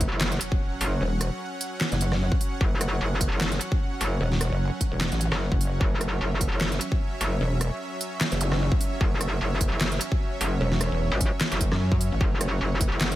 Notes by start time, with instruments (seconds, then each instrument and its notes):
Already playing: supersaw synth F#3 C#4 C#5 F#5, sub drop
0.01 kick, closed hi-hat
0.12 wobble bass F#1
0.21 snare, clap
0.32 closed hi-hat
0.41 closed hi-hat
0.52 kick
0.81 wobble bass F#1, open hi-hat
1.01 wobble bass E1
1.21 cross-stick, closed hi-hat
1.61 closed hi-hat
1.81 snare, clap
1.92 wobble bass F#1, closed hi-hat
2.01 closed hi-hat
2.12 cross-stick, snare
2.32 kick
2.41 open hi-hat
2.61 wobble bass F#1, kick
2.81 cross-stick, closed hi-hat
3.01 wobble bass F#1
3.21 kick, closed hi-hat
3.32 wobble bass F#1
3.41 snare, clap
3.52 closed hi-hat
3.61 closed hi-hat
3.72 kick
4.01 wobble bass F#1, open hi-hat
4.21 wobble bass E1
4.32 snare
4.41 cross-stick, closed hi-hat
4.52 wobble bass F#1
4.81 kick, closed hi-hat
4.92 wobble bass E1
5.01 snare, clap
5.12 wobble bass A1, closed hi-hat
5.21 closed hi-hat
5.32 wobble bass F#1, cross-stick, snare
5.52 wobble bass F#1, kick
5.61 open hi-hat
5.81 wobble bass F#1, supersaw synth E5, kick
6.01 cross-stick, closed hi-hat
6.21 wobble bass F#1
6.41 kick, closed hi-hat
6.52 wobble bass F#1
6.61 snare, clap
6.72 closed hi-hat
6.81 closed hi-hat
6.92 kick
7.21 wobble bass F#1, open hi-hat
7.41 wobble bass E1
7.61 cross-stick, closed hi-hat
8.01 closed hi-hat
8.21 snare, clap
8.32 wobble bass F#1, closed hi-hat
8.41 closed hi-hat, zap
8.52 cross-stick, snare
8.72 kick
8.81 open hi-hat
9.01 wobble bass F#1, kick
9.21 cross-stick, closed hi-hat
9.41 wobble bass F#1
9.61 kick, closed hi-hat
9.72 wobble bass F#1
9.81 snare, clap
9.92 closed hi-hat
10.01 closed hi-hat
10.12 kick
10.41 wobble bass F#1, open hi-hat
10.61 wobble bass E1
10.72 snare
10.81 cross-stick, closed hi-hat
10.92 wobble bass E1
11.12 wobble bass G#1
11.21 kick, closed hi-hat
11.41 snare, clap
11.52 wobble bass F#1, closed hi-hat
11.61 kick, closed hi-hat
11.72 wobble bass F#2, cross-stick, snare
11.92 kick
12.01 open hi-hat
12.12 wobble bass A1
12.21 wobble bass F#1, supersaw synth F#5, kick
12.41 cross-stick, closed hi-hat
12.61 wobble bass F#1
12.81 kick, closed hi-hat
12.92 wobble bass F#1
13.01 snare, clap
13.12 closed hi-hat